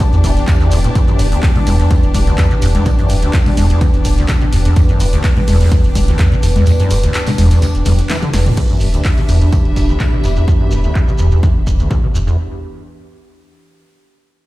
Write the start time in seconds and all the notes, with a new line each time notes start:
Already playing: E3 B3 D4 G4 D5 A5
0.00 D2, kick, closed hi-hat, ride, tambourine, shekere
0.13 E2, snare, closed hi-hat, shekere
0.24 E1 E3, kick, open hi-hat, ride, tambourine, shekere
0.37 snare, closed hi-hat, shekere
0.47 E2, kick, snare, clap, closed hi-hat, ride, tambourine, shekere
0.60 E2, snare, closed hi-hat, shekere
0.71 E1 E2, open hi-hat, ride, tambourine, shekere
0.84 A2, closed hi-hat, shekere
0.95 E2 B4, kick, closed hi-hat, ride, tambourine, shekere
1.08 F#2, closed hi-hat, shekere
1.19 E1 G2, open hi-hat, ride, tambourine, shekere
1.32 D2, closed hi-hat, shekere
1.42 kick, snare, clap, closed hi-hat, open hi-hat, ride, shekere
1.56 B2, snare, closed hi-hat, low conga
1.66 E1 E2, open hi-hat, ride, tambourine, low conga, shekere
1.80 E2, closed hi-hat, shekere
1.90 D2, kick, closed hi-hat, ride, tambourine, shekere
2.03 E1, closed hi-hat, shekere
2.14 E1, kick, open hi-hat, ride, tambourine, low conga, shekere
2.27 D2, closed hi-hat, shekere
2.38 E2, kick, snare, clap, closed hi-hat, ride, tambourine, shekere
2.51 B2, closed hi-hat, shekere
2.62 E1 E2, snare, open hi-hat, ride, tambourine, shekere
2.75 E2, closed hi-hat, low conga, shekere
2.85 E2, kick, closed hi-hat, ride, tambourine, shekere
2.99 F#2, closed hi-hat, shekere
3.08 E1 G2, open hi-hat, ride, tambourine, shekere
3.22 D2, closed hi-hat, shekere
3.33 kick, snare, clap, closed hi-hat, ride, tambourine, shekere
3.46 B2, snare, open hi-hat, low conga
3.57 E1 E2, open hi-hat, ride, tambourine, low conga, shekere
3.70 E2, closed hi-hat, shekere
3.81 D2, kick, closed hi-hat, ride, tambourine, shekere
3.94 E1, snare, closed hi-hat, shekere
4.05 E1, kick, open hi-hat, ride, tambourine, shekere
4.18 D2, snare, closed hi-hat, shekere
4.28 E2, kick, snare, clap, closed hi-hat, ride, tambourine, shekere
4.40 B2, snare, closed hi-hat, shekere
4.53 E1 E2, open hi-hat, ride, tambourine, shekere
4.65 E2, closed hi-hat, shekere
4.76 E2, kick, closed hi-hat, ride, tambourine, shekere
4.88 F#2, closed hi-hat, shekere
4.99 E1 G2, open hi-hat, ride, tambourine, shekere
5.13 D2, closed hi-hat, shekere
5.24 kick, snare, clap, closed hi-hat, open hi-hat, ride, shekere
5.37 B2, snare, closed hi-hat, low conga
5.47 E1 E2, snare, open hi-hat, ride, low conga, shekere
5.54 snare, open hi-hat
5.60 E2, snare, closed hi-hat, open hi-hat, shekere
5.66 snare, open hi-hat
5.71 D2, kick, closed hi-hat, ride, tambourine, shekere
5.84 E1, closed hi-hat, shekere
5.95 E1, kick, open hi-hat, ride, tambourine, low conga, shekere
6.08 D2, closed hi-hat, shekere
6.18 E2, kick, snare, clap, closed hi-hat, ride, tambourine, shekere
6.32 B2, closed hi-hat, shekere
6.43 E1 E2, snare, open hi-hat, ride, tambourine, shekere
6.56 E2, closed hi-hat, low conga, shekere
6.66 E2, closed hi-hat, ride, tambourine, shekere
6.79 F#2, closed hi-hat, shekere
6.90 E1 G2, snare, open hi-hat, ride, tambourine, shekere
7.03 D2, closed hi-hat, shekere
7.14 snare, clap, closed hi-hat, ride, tambourine, shekere
7.27 B2, snare, open hi-hat, tambourine, low conga, shekere
7.38 E1 E2, open hi-hat, ride, low conga, shekere
7.51 E2, snare, closed hi-hat, tambourine, shekere
7.62 D2, snare, closed hi-hat, ride, tambourine, shekere
7.75 E1, closed hi-hat, shekere
7.85 E1 E2, snare, open hi-hat, high tom, ride, tambourine, shekere
7.98 snare, closed hi-hat, shekere
8.09 E3, snare, clap, closed hi-hat, ride, tambourine, shekere
8.22 D3, snare, closed hi-hat, mid tom, shekere
8.33 E1 E2, snare, open hi-hat, ride, shekere
8.46 B2, snare, closed hi-hat, mid tom, open hi-hat, shekere
8.57 E2 E3 B3 D4 G4, kick, closed hi-hat, tambourine, crash, shekere
8.64 E5
8.70 F#2, closed hi-hat
8.76 G4, shekere
8.81 E1 G2, open hi-hat, tambourine
8.94 D2 B5, closed hi-hat, shekere
9.04 kick, snare, clap, closed hi-hat, open hi-hat, shekere
9.18 B2, snare, closed hi-hat, shekere
9.29 E1 E2, open hi-hat, tambourine, shekere
9.41 E2, closed hi-hat, shekere
9.52 D2, kick, closed hi-hat, tambourine, shekere
9.65 E1, closed hi-hat
9.76 E1, kick, open hi-hat, tambourine, shekere
9.89 D2, closed hi-hat, shekere
10.00 E2, kick, snare, clap, closed hi-hat, tambourine, shekere
10.13 B2, closed hi-hat
10.24 E1 E2, snare, open hi-hat, tambourine, shekere
10.36 E2, closed hi-hat, shekere
10.48 E2, kick, shekere
10.60 F#2, closed hi-hat
10.71 E1 G2, open hi-hat, shekere
10.84 D2, closed hi-hat, shekere
10.95 kick, clap, shekere
11.08 B2, open hi-hat, shekere
11.18 E1 E2, open hi-hat, shekere
11.31 E2, closed hi-hat, shekere
11.43 D2, kick, shekere
11.56 E1, closed hi-hat
11.67 E1, kick, open hi-hat, shekere
11.79 D2, shekere
11.90 E2, kick, clap, shekere
12.03 B2
12.14 E1 E2, open hi-hat, shekere
12.27 E2, shekere